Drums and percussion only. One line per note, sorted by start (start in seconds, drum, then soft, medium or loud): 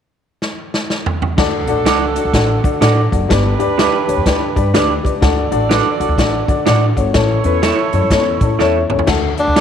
0.42 snare medium
0.74 snare medium
0.90 snare medium
1.06 floor tom medium
1.22 floor tom medium
1.38 kick loud
1.38 snare loud
1.38 crash medium
1.67 closed hi-hat medium
1.86 snare loud
1.86 closed hi-hat medium
2.16 closed hi-hat medium
2.34 kick medium
2.34 snare loud
2.34 closed hi-hat medium
2.64 kick medium
2.64 closed hi-hat medium
2.82 snare loud
2.82 closed hi-hat loud
3.12 kick medium
3.12 closed hi-hat medium
3.30 kick loud
3.30 snare loud
3.30 closed hi-hat loud
3.60 closed hi-hat medium
3.79 snare loud
3.79 closed hi-hat medium
4.09 closed hi-hat medium
4.26 kick medium
4.26 snare loud
4.26 closed hi-hat medium
4.56 kick medium
4.56 closed hi-hat medium
4.75 snare medium
4.75 closed hi-hat loud
5.05 kick medium
5.05 closed hi-hat medium
5.22 kick loud
5.22 snare loud
5.22 closed hi-hat medium
5.52 closed hi-hat medium
5.71 snare loud
5.71 closed hi-hat medium
6.01 closed hi-hat medium
6.18 kick medium
6.18 snare loud
6.18 closed hi-hat medium
6.48 kick medium
6.48 closed hi-hat medium
6.67 snare loud
6.67 closed hi-hat medium
6.97 kick medium
6.97 closed hi-hat medium
7.14 kick loud
7.14 snare loud
7.14 closed hi-hat medium
7.44 closed hi-hat medium
7.63 snare loud
7.63 closed hi-hat medium
7.93 closed hi-hat medium
8.10 kick medium
8.10 snare loud
8.10 closed hi-hat medium
8.41 kick medium
8.41 closed hi-hat medium
8.59 snare soft
8.90 mid tom medium
8.99 floor tom medium
9.07 kick loud
9.07 snare loud
9.07 crash medium
9.38 closed hi-hat soft
9.56 snare loud
9.56 closed hi-hat medium